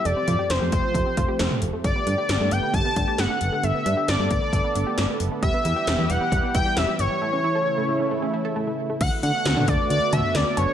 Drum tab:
CC |----------------|----------------|----------------|----------------|
HH |x-x-x-x-x-x-x-x-|x-x-x-x-x-x-x-x-|x-x-x-x-x-x-x-x-|x-x-x-x-x-x-x-x-|
CB |----------------|----------------|----------------|----------------|
SD |----o-------o---|----o-------o---|----o-------o---|----o-------o---|
T2 |--o----------o--|----------------|----------------|----------------|
BD |------o-o-o-----|o-------o-o-----|------o-o-------|o-------o-o-----|

CC |----------------|x---------------|
HH |----------------|x-x-x-x-x-x-x-x-|
CB |----------------|----------x---x-|
SD |----------------|----o-------o---|
T2 |----------------|-----o----o-----|
BD |----------------|o-----o---------|